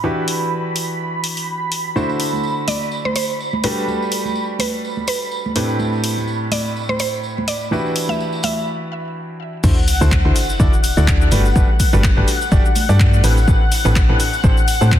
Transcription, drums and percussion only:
0.28 open hi-hat
0.76 open hi-hat
1.24 open hi-hat
1.37 open hi-hat
1.72 open hi-hat
1.96 tambourine, high conga
2.09 tambourine
2.20 open hi-hat, tambourine
2.33 tambourine, high conga
2.43 tambourine
2.68 open hi-hat, tambourine, high conga
2.81 tambourine
2.91 tambourine
3.05 high conga
3.16 open hi-hat, tambourine
3.29 tambourine
3.40 tambourine
3.53 high conga
3.63 open hi-hat, tambourine
3.78 tambourine
3.88 tambourine, high conga
4.02 tambourine
4.12 open hi-hat, tambourine
4.25 tambourine, high conga
4.35 tambourine
4.59 open hi-hat, tambourine, high conga
4.72 tambourine
4.84 tambourine
4.97 high conga
5.07 open hi-hat, tambourine
5.22 tambourine
5.31 tambourine
5.46 high conga
5.55 open hi-hat, tambourine
5.69 tambourine
5.79 tambourine, high conga
5.93 tambourine
6.04 open hi-hat, tambourine
6.17 tambourine, high conga
6.27 tambourine
6.51 open hi-hat, tambourine, high conga
6.65 tambourine
6.76 tambourine
6.89 high conga
6.99 open hi-hat, tambourine
7.13 tambourine
7.23 tambourine
7.38 high conga
7.48 open hi-hat, tambourine
7.61 tambourine
7.71 tambourine, high conga
7.86 tambourine
7.96 open hi-hat, tambourine
8.08 tambourine, high conga
8.20 tambourine
8.33 tambourine
8.43 open hi-hat, tambourine, high conga
8.57 tambourine
9.63 kick, crash, tambourine, cabasa
9.87 open hi-hat, tambourine, cabasa
10.01 tambourine, high conga, cabasa
10.12 kick, clap, tambourine, cabasa
10.36 open hi-hat, tambourine, cabasa
10.49 tambourine, cabasa
10.60 kick, cabasa
10.73 cabasa
10.84 open hi-hat, tambourine, cabasa
10.96 tambourine, high conga, cabasa
11.08 kick, clap, cabasa
11.21 cabasa
11.31 open hi-hat, tambourine, high conga, cabasa
11.45 tambourine, cabasa
11.56 kick, tambourine, cabasa
11.79 kick, open hi-hat, tambourine, cabasa
11.93 tambourine, high conga, cabasa
12.03 kick, clap, tambourine, cabasa
12.28 open hi-hat, tambourine, cabasa
12.41 tambourine, cabasa
12.52 kick, tambourine, cabasa
12.65 cabasa
12.75 open hi-hat, tambourine, high conga, cabasa
12.89 tambourine, cabasa
13.00 kick, clap, tambourine, cabasa
13.13 high conga, cabasa
13.24 open hi-hat, tambourine, cabasa
13.37 tambourine, cabasa
13.47 kick, tambourine, cabasa
13.71 open hi-hat, tambourine, cabasa
13.84 tambourine, high conga, cabasa
13.96 kick, clap, tambourine, cabasa
14.20 open hi-hat, tambourine, cabasa
14.33 tambourine, cabasa
14.44 kick, tambourine, cabasa
14.57 cabasa
14.68 open hi-hat, tambourine, cabasa
14.81 tambourine, high conga, cabasa
14.92 kick, clap, tambourine, cabasa

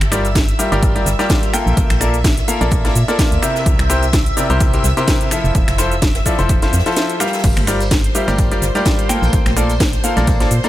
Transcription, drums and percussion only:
0.01 finger snap, snare, closed hi-hat, cabasa
0.11 finger snap, snare, closed hi-hat, open hi-hat, cabasa
0.25 closed hi-hat, cabasa
0.35 kick, snare, closed hi-hat, cabasa
0.48 closed hi-hat, cabasa
0.59 closed hi-hat, open hi-hat, cabasa
0.72 closed hi-hat, cabasa
0.82 kick, closed hi-hat, cabasa
0.96 closed hi-hat, cabasa
1.06 snare, closed hi-hat, open hi-hat, cabasa
1.19 snare, closed hi-hat, cabasa
1.29 kick, snare, closed hi-hat, cabasa
1.43 closed hi-hat, cabasa
1.53 finger snap, closed hi-hat, open hi-hat, cabasa
1.67 cabasa
1.77 kick, closed hi-hat, cabasa
1.90 finger snap, snare, closed hi-hat, cabasa
2.01 finger snap, closed hi-hat, open hi-hat, cabasa
2.14 closed hi-hat, cabasa
2.24 kick, snare, closed hi-hat, cabasa
2.37 snare, closed hi-hat, cabasa
2.47 closed hi-hat, open hi-hat, cabasa
2.61 closed hi-hat, cabasa
2.71 kick, closed hi-hat, cabasa
2.85 snare, closed hi-hat, cabasa
2.95 closed hi-hat, open hi-hat, cabasa
3.08 closed hi-hat, cabasa
3.19 kick, snare, closed hi-hat, cabasa
3.32 closed hi-hat, cabasa
3.43 finger snap, closed hi-hat, open hi-hat, cabasa
3.56 snare, cabasa
3.66 kick, closed hi-hat, cabasa
3.79 finger snap, snare, closed hi-hat, cabasa
3.89 finger snap, snare, closed hi-hat, open hi-hat, cabasa
4.03 closed hi-hat, cabasa
4.13 kick, snare, closed hi-hat, cabasa
4.26 closed hi-hat, cabasa
4.37 closed hi-hat, open hi-hat, cabasa
4.50 closed hi-hat, cabasa
4.60 kick, closed hi-hat, cabasa
4.73 closed hi-hat, cabasa
4.84 snare, closed hi-hat, open hi-hat, cabasa
4.97 snare, closed hi-hat, cabasa
5.08 kick, snare, closed hi-hat, cabasa
5.21 closed hi-hat, cabasa
5.31 finger snap, closed hi-hat, open hi-hat, cabasa
5.45 closed hi-hat, cabasa
5.55 kick, closed hi-hat, cabasa
5.68 finger snap, snare, closed hi-hat, cabasa
5.78 finger snap, snare, closed hi-hat, open hi-hat, cabasa
5.92 closed hi-hat, cabasa
6.02 kick, snare, closed hi-hat, cabasa
6.15 snare, closed hi-hat, cabasa
6.26 kick, closed hi-hat, open hi-hat, cabasa
6.39 snare, closed hi-hat, cabasa
6.49 kick, closed hi-hat, cabasa
6.62 snare, closed hi-hat, cabasa
6.73 snare, closed hi-hat, open hi-hat, cabasa
6.79 snare, closed hi-hat
6.86 snare, closed hi-hat, cabasa
6.91 snare, closed hi-hat
6.96 snare, closed hi-hat, cabasa
7.09 closed hi-hat, cabasa
7.20 finger snap, snare, closed hi-hat, open hi-hat, cabasa
7.27 snare, closed hi-hat
7.33 snare, closed hi-hat, cabasa
7.38 snare, closed hi-hat
7.44 kick, closed hi-hat, crash, tambourine, cabasa
7.57 finger snap, snare, closed hi-hat, tambourine, high conga, cabasa
7.67 finger snap, snare, closed hi-hat, open hi-hat, cabasa
7.80 closed hi-hat, tambourine, cabasa
7.91 kick, snare, closed hi-hat, tambourine, high conga, cabasa
8.04 closed hi-hat, tambourine, cabasa
8.14 closed hi-hat, open hi-hat, cabasa
8.28 closed hi-hat, tambourine, high conga, cabasa
8.38 kick, closed hi-hat, tambourine, cabasa
8.52 closed hi-hat, tambourine, cabasa
8.62 snare, closed hi-hat, open hi-hat, cabasa
8.75 snare, closed hi-hat, tambourine, high conga, cabasa
8.85 kick, snare, closed hi-hat, tambourine, cabasa
8.99 closed hi-hat, tambourine, cabasa
9.09 finger snap, closed hi-hat, open hi-hat, high conga, cabasa
9.23 tambourine, cabasa
9.33 kick, closed hi-hat, tambourine, cabasa
9.46 finger snap, snare, closed hi-hat, tambourine, high conga, cabasa
9.56 finger snap, closed hi-hat, open hi-hat, cabasa
9.70 closed hi-hat, tambourine, cabasa
9.80 kick, snare, closed hi-hat, tambourine, high conga, cabasa
9.93 snare, closed hi-hat, tambourine, cabasa
10.04 closed hi-hat, open hi-hat, cabasa
10.17 closed hi-hat, tambourine, high conga, cabasa
10.27 kick, closed hi-hat, tambourine, cabasa
10.40 snare, closed hi-hat, tambourine, cabasa
10.51 closed hi-hat, open hi-hat, cabasa
10.63 closed hi-hat, tambourine, high conga, cabasa

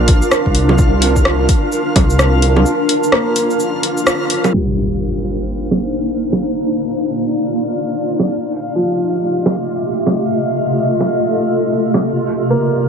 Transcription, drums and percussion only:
0.08 kick, open hi-hat
0.22 shaker
0.31 cross-stick, shaker
0.46 kick
0.55 open hi-hat
0.69 low bongo
0.78 kick, shaker
1.02 open hi-hat
1.16 kick, shaker
1.25 cross-stick
1.49 kick, open hi-hat, shaker
1.72 shaker
1.96 kick, open hi-hat, low bongo
2.10 shaker
2.19 cross-stick, shaker
2.42 open hi-hat
2.56 low bongo
2.66 shaker
2.89 open hi-hat
3.03 shaker
3.12 cross-stick
3.36 open hi-hat, shaker
3.50 shaker
3.60 shaker
3.83 open hi-hat
3.97 shaker
4.07 cross-stick, shaker
4.30 open hi-hat
4.44 low bongo, shaker
5.71 low bongo
6.32 low bongo
8.19 low bongo
9.46 low bongo
10.06 low bongo
11.00 low bongo
11.94 low bongo

